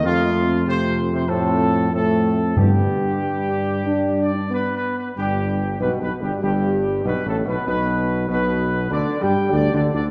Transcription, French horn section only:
X:1
M:4/4
L:1/16
Q:1/4=96
K:Gmix
V:1 name="French horn section"
[A,C]4 [A,C]4 [A,C]4 [A,C]4 | [G,B,]4 G,4 D3 z B,4 | [K:G] G,4 (3B,2 B,2 G,2 G,4 (3B,2 A,2 B,2 | B,4 B,4 D2 G2 (3D2 D2 D2 |]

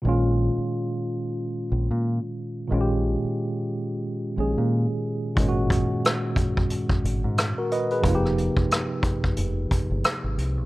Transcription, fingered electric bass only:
X:1
M:4/4
L:1/16
Q:"Swing 16ths" 1/4=90
K:Bbdor
V:1 name="Fingered electric bass" clef=bass
B,,,3 z6 z B,,, B,,2 z3 | B,,,3 z6 z B,,, B,,2 z3 | A,,,3 z6 z A,,, A,,2 z3 | F,,,3 z4 z F,,,2 z G,,, z A,,, C,, _C,, |]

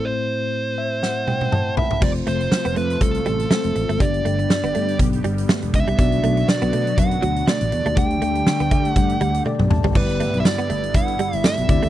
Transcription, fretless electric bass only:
X:1
M:4/4
L:1/16
Q:"Swing 16ths" 1/4=121
K:G
V:1 name="Fretless electric bass" clef=bass
z16 | =F,,,2 F,,,2 z F,,, =F,,2 C,,2 A,,,2 z F,,, A,,, _A,,, | G,,,2 G,,,2 z G,,, G,,2 B,,,2 G,,,2 z E,,, ^C,, =C,, | B,,,2 B,,,2 z B,,, B,,2 F,,2 D,,2 z A,,, E,, _E,, |
D,,2 D,,2 z D,, D,2 G,,2 D,,2 z B,,, A,,, _A,,, | G,,,3 B,,, z2 G,,,2 G,,2 z G,,, z B,,, D,, _E,, |]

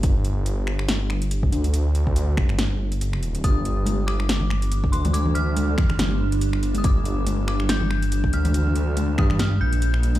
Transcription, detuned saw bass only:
X:1
M:4/4
L:1/8
Q:"Swing 16ths" 1/4=141
K:Gm
V:1 name="Detuned saw bass" clef=bass
G,,,4 G,,,3 D,,- | D,,3 G,,,4- G,,, | G,,,4 G,,,3 D,,- | D,,3 z G,,,4 |
G,,,4 G,,,3 D,,- | D,,3 G,,2 B,,,3 |]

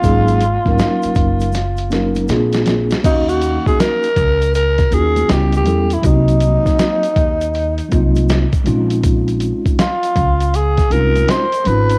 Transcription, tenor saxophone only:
X:1
M:4/4
L:1/16
Q:"Swing 16ths" 1/4=80
K:Bbm
V:1 name="Tenor saxophone"
F12 z4 | E G2 A B4 B2 A2 =G G2 =E | E12 z4 | z4 F4 A2 B2 c2 _c2 |]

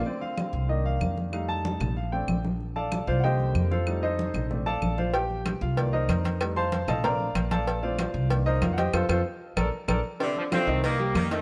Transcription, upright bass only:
X:1
M:4/4
L:1/8
Q:1/4=189
K:Bb
V:1 name="Upright bass" clef=bass
z3 C,,3 F,,2- | F,,3 B,,,3 B,,,2- | B,,,3 C,,3 F,,2- | F,,3 B,,,3 B,,,2- |
B,,,3 C,,3 F,,2- | F,,3 B,,,3 B,,,2- | B,,,3 C,,3 F,,2 | F,, F,, z2 B,,, z B,,, z |
z3 C,,3 F,,2 |]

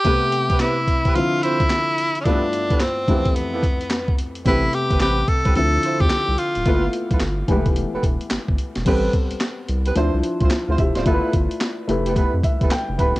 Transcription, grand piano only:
X:1
M:4/4
L:1/16
Q:"Swing 16ths" 1/4=109
K:Am
V:1 name="Grand piano"
z16 | z16 | z16 | z16 |
z12 z [Ec] [Ge] [Fd]- | [Fd] z8 z e2 g2 b2 |]
V:2 name="Grand piano"
[C,A,B,G]8 [D,F,CE]8 | [G,,A,B,EF]6 [F,,E,A,B,G]8- [F,,E,A,B,G]2 | [C,A,B,G]8 [D,F,CE]8 | [A,_B,=B,EF]6 [E,^G,A,B,=G]8- [E,^G,A,B,=G]2 |
[G,B,CA]8 [F,DEc]8 | [A,EFAB]6 [A,EGB]8- [A,EGB]2 |]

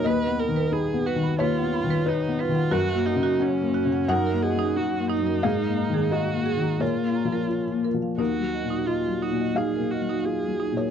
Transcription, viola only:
X:1
M:4/4
L:1/8
Q:1/4=88
K:Ebm
V:1 name="Viola"
=B _B A ^F =F2 ^D F | G E D2 B A G E- | E2 G2 F3 z | G2 F G A G A2 |]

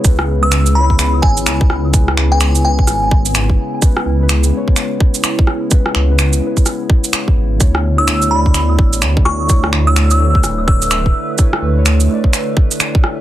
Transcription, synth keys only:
X:1
M:4/4
L:1/16
Q:"Swing 16ths" 1/4=127
K:Bdor
V:1 name="Synth keys"
[G,CEB]3 [G,CEB]3 [G,CEc]8- [G,CEc]2 | [G,CEB] z2 [G,CEB]3 [G,CEB]8- [G,CEB]2 | [G,CEB]3 [G,CEB]3 [G,CEc]8- [G,CEc]2 | [G,CEB] z2 [G,CEB]3 [G,CEB]8- [G,CEB]2 |
[A,DEc]3 [A,DEc]3 [A,DEd]8- [A,DEd]2 | [A,DEc] z2 [A,DEc]3 [A,DEc]8- [A,DEc]2 | [A,DEc]3 [A,DEc]3 [A,DEd]8- [A,DEd]2 |]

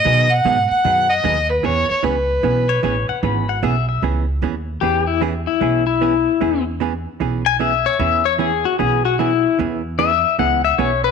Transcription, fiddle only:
X:1
M:4/4
L:1/8
Q:"Swing" 1/4=151
K:E
V:1 name="Fiddle"
d f2 f2 d2 B | c c B6 | z8 | z8 |
z8 | z8 | z8 |]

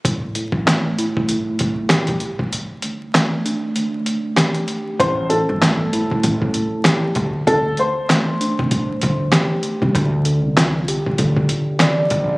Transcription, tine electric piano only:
X:1
M:4/4
L:1/8
Q:"Swing 16ths" 1/4=97
K:Aphr
V:1 name="Tine electric piano" clef=bass
A,, A,, A, E A,,2 G z | D,, D,, A, D D,,2 G2 | A,, A,, A, E A,,2 G z | D,, D,, A, D D,,2 G2 |
D, D, F G D,2 d2 |]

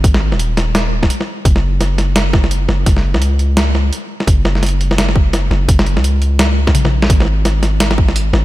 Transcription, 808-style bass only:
X:1
M:4/4
L:1/16
Q:"Swing 16ths" 1/4=170
K:F#
V:1 name="808-style bass" clef=bass
G,,,3 D,,,8- D,,, z4 | F,,,12- F,,,2 F,,,2 | F,,,3 C,,8- C,, z4 | F,,,12- F,,,2 F,,,2 |
F,,,3 C,,8- C,, A,,,4 | G,,,12- G,,,2 G,,,2 |]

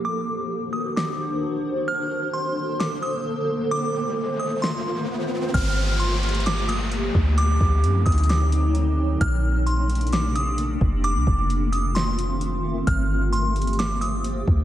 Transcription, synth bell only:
X:1
M:4/4
L:1/8
Q:1/4=131
K:Gm
V:1 name="Synth bell"
d'3 e' d'4 | f'2 c'2 d' e' z2 | d'3 e' c'4 | f'2 c'2 d' e' z2 |
d'3 e' d'4 | f'2 c'2 d' e' z2 | d'3 e' c'4 | f'2 c'2 d' e' z2 |]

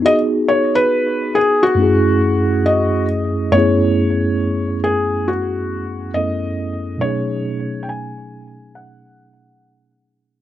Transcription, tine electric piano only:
X:1
M:4/4
L:1/8
Q:"Swing 16ths" 1/4=69
K:F#dor
V:1 name="Tine electric piano"
[B,DFG]4 [F,,A,CEG]4 | [F,,A,B,CEG]6 [F,,A,B,CEA]2 | [B,,F,A,CDG]8 |]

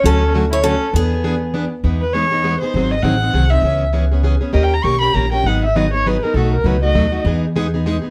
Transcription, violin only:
X:1
M:3/4
L:1/8
Q:"Swing" 1/4=200
K:Emix
V:1 name="Violin"
C2 z E C2 | B,4- B, z | [K:E] z B c3 =c- | =c d f3 e- |
e z4 z | (3d =g ^a c' b a g | f e d c B ^A | A ^A B d3 |
z6 |]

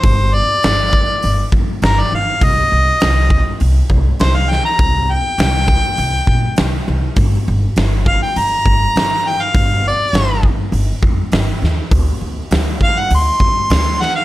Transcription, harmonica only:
X:1
M:4/4
L:1/16
Q:1/4=101
K:Cdor
V:1 name="Harmonica"
c2 d8 z2 B d f2 | e8 z4 c f g b- | b2 g12 z2 | z6 f g b6 g f- |
f2 d4 z8 z2 | z6 ^e ^f c'6 f e |]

